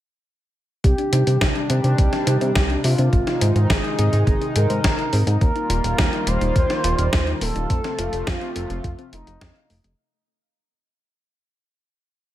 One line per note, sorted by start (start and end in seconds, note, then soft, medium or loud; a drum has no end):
0.84 0.95 C2 loud
0.84 5.37 C3 medium
0.84 3.10 D#3 medium
0.84 3.10 G3 medium
0.84 0.95 C4 medium
0.84 3.10 D4 loud
0.84 1.58 G4 loud
0.84 kick loud
0.84 closed hi-hat medium
0.98 1.09 D4 loud
0.98 closed hi-hat soft
1.12 1.23 C3 medium
1.12 1.24 D#4 loud
1.12 closed hi-hat loud
1.27 1.37 C3 medium
1.27 1.33 G4 medium
1.27 closed hi-hat medium
1.41 1.52 C2 medium
1.41 1.48 D#4 medium
1.41 kick loud
1.41 snare loud
1.41 closed hi-hat medium
1.55 1.66 D4 loud
1.55 closed hi-hat soft
1.70 1.80 C3 medium
1.70 1.83 C4 medium
1.70 2.73 G4 loud
1.70 closed hi-hat loud
1.84 1.94 C3 loud
1.84 1.98 D4 medium
1.84 closed hi-hat medium
1.98 2.09 C2 medium
1.98 2.09 C4 medium
1.98 kick loud
1.98 closed hi-hat medium
2.13 2.24 D4 loud
2.13 snare soft
2.13 closed hi-hat soft
2.27 2.37 C3 medium
2.27 2.38 D#4 loud
2.27 closed hi-hat medium
2.41 2.52 C3 loud
2.41 2.48 G4 medium
2.41 closed hi-hat medium
2.55 2.76 C2 loud
2.55 2.62 D#4 medium
2.55 kick loud
2.55 snare loud
2.55 closed hi-hat medium
2.70 2.81 D4 loud
2.70 closed hi-hat soft
2.84 2.95 C3 loud
2.84 2.98 C4 medium
2.84 3.59 F4 loud
2.84 open hi-hat medium
2.98 3.09 C3 loud
2.98 3.12 D4 medium
2.98 closed hi-hat medium
3.12 3.23 G#1 medium
3.12 5.39 D#3 medium
3.12 5.39 G#3 medium
3.12 3.24 C4 medium
3.12 5.39 D#4 medium
3.12 kick loud
3.12 closed hi-hat medium
3.27 3.38 D#4 loud
3.27 snare soft
3.27 closed hi-hat soft
3.41 3.52 G#2 medium
3.41 3.52 G#4 loud
3.41 closed hi-hat loud
3.55 3.66 G#2 medium
3.55 3.62 C5 medium
3.55 closed hi-hat medium
3.70 3.80 G#1 medium
3.70 3.76 G#4 medium
3.70 4.44 G#4 loud
3.70 kick loud
3.70 snare loud
3.70 closed hi-hat medium
3.84 3.95 D#4 loud
3.84 closed hi-hat soft
3.98 4.09 G#2 medium
3.98 4.12 C4 medium
3.98 closed hi-hat medium
4.13 4.23 G#2 loud
4.13 4.26 D#4 medium
4.13 closed hi-hat medium
4.27 4.37 G#1 medium
4.27 4.38 C4 medium
4.27 kick loud
4.27 closed hi-hat medium
4.41 4.52 D#4 loud
4.41 closed hi-hat soft
4.56 4.66 G#2 medium
4.56 4.67 G#4 loud
4.56 5.30 A#4 loud
4.56 closed hi-hat loud
4.70 4.80 G#2 medium
4.70 4.76 C5 medium
4.70 closed hi-hat medium
4.84 4.95 G#1 medium
4.84 4.91 G#4 medium
4.84 kick loud
4.84 snare loud
4.84 closed hi-hat medium
4.98 5.09 D#4 loud
4.98 closed hi-hat soft
5.13 5.23 G#2 medium
5.13 5.26 C4 medium
5.13 open hi-hat medium
5.27 5.37 G#2 medium
5.27 5.41 D#4 medium
5.27 closed hi-hat medium
5.41 5.52 D#2 medium
5.41 7.67 D#3 medium
5.41 7.67 G3 medium
5.41 7.67 A#3 medium
5.41 5.52 A#3 medium
5.41 7.67 F4 loud
5.41 6.29 A#4 loud
5.41 kick loud
5.41 closed hi-hat medium
5.56 5.67 D#4 loud
5.56 closed hi-hat soft
5.69 5.80 D#1 medium
5.69 5.81 F4 loud
5.69 closed hi-hat loud
5.84 5.94 D#1 medium
5.84 5.91 G4 medium
5.84 closed hi-hat medium
5.98 6.09 D#2 medium
5.98 6.05 F4 medium
5.98 kick loud
5.98 snare loud
5.98 closed hi-hat medium
6.13 6.24 D#4 loud
6.13 closed hi-hat soft
6.27 6.37 D#1 medium
6.27 6.41 A#3 medium
6.27 7.30 C5 loud
6.27 closed hi-hat medium
6.41 6.52 D#1 loud
6.41 6.55 D#4 medium
6.41 closed hi-hat medium
6.56 6.66 D#2 medium
6.56 6.67 A#3 medium
6.56 kick loud
6.56 closed hi-hat medium
6.70 6.81 D#4 loud
6.70 snare soft
6.70 closed hi-hat soft
6.84 6.94 D#1 medium
6.84 6.95 F4 loud
6.84 closed hi-hat medium
6.98 7.09 D#1 loud
6.98 7.05 G4 medium
6.98 closed hi-hat medium
7.13 7.33 D#2 loud
7.13 7.19 F4 medium
7.13 kick loud
7.13 snare loud
7.13 closed hi-hat medium
7.27 7.38 D#4 loud
7.27 closed hi-hat soft
7.41 7.52 D#1 medium
7.41 7.55 A#3 medium
7.41 8.29 A4 loud
7.41 open hi-hat medium
7.55 7.66 D#1 loud
7.55 7.69 D#4 medium
7.55 closed hi-hat medium
7.70 7.80 F2 loud
7.70 9.96 C3 medium
7.70 9.96 F3 medium
7.70 9.96 A3 medium
7.70 7.81 A3 medium
7.70 9.96 F4 medium
7.70 kick loud
7.70 closed hi-hat medium
7.84 7.95 C4 medium
7.84 snare soft
7.84 closed hi-hat soft
7.99 8.09 F1 medium
7.99 8.09 F4 loud
7.99 closed hi-hat loud
8.13 8.23 F1 medium
8.13 8.19 A4 medium
8.13 closed hi-hat medium
8.27 8.37 F2 medium
8.27 8.34 F4 medium
8.27 9.01 F4 loud
8.27 kick loud
8.27 snare loud
8.27 closed hi-hat medium
8.41 8.52 C4 loud
8.41 closed hi-hat soft
8.55 8.66 F1 medium
8.55 8.69 A3 medium
8.55 closed hi-hat medium
8.70 8.80 F1 loud
8.70 8.83 C4 medium
8.70 closed hi-hat medium
8.84 8.95 F2 loud
8.84 8.95 A3 medium
8.84 kick loud
8.84 closed hi-hat medium
8.99 9.09 C4 loud
8.99 closed hi-hat soft
9.13 9.23 F1 medium
9.13 9.24 A3 medium
9.13 9.87 D#4 loud
9.13 closed hi-hat medium
9.27 9.37 F1 medium
9.27 9.41 F4 medium
9.27 closed hi-hat medium
9.41 9.52 F2 loud
9.41 9.55 C4 loud
9.41 kick loud
9.41 snare loud
9.41 closed hi-hat medium
9.55 9.69 F5 loud
9.55 closed hi-hat soft
9.70 9.80 F1 medium
9.70 9.81 A3 medium
9.70 open hi-hat medium
9.84 9.95 F1 medium
9.84 9.98 A3 medium
9.84 closed hi-hat medium